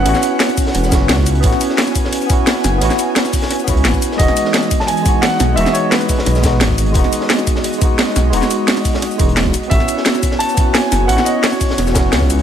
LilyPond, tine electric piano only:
\new Staff \with { instrumentName = "Tine electric piano" } { \time 4/4 \key a \lydian \tempo 4 = 174 <b cis' e' fis'>2~ <b cis' e' fis'>8 <b cis' e' fis'>4. | <b cis' e' fis'>2~ <b cis' e' fis'>8 <b cis' e' fis'>4. | <b cis' e' fis'>2~ <b cis' e' fis'>8 <b cis' e' fis'>4. | <gis b dis' fis'>2~ <gis b dis' fis'>8 <gis b dis' fis'>4. |
<gis b dis' fis'>2~ <gis b dis' fis'>8 <gis b dis' fis'>4. | <gis b dis' fis'>2~ <gis b dis' fis'>8 <gis b dis' fis'>4. | <gis b dis' fis'>2~ <gis b dis' fis'>8 <gis b dis' fis'>4 r8 | <b cis' e' fis'>2~ <b cis' e' fis'>8 <b cis' e' fis'>4. |
<b cis' e' fis'>2~ <b cis' e' fis'>8 <b cis' e' fis'>4. | }